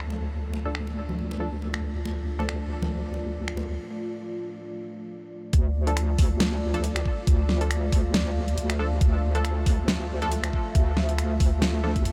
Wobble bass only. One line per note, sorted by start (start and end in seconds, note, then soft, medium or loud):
0.00 3.79 D2 medium
5.53 6.17 D2 medium
6.19 7.04 D2 loud
7.27 7.91 D2 loud
7.92 8.56 D2 loud
8.58 9.00 D2 loud
9.01 9.65 D2 loud
9.66 10.52 D2 loud
10.75 11.39 D2 loud
11.40 12.04 D2 loud
12.05 12.12 E2 loud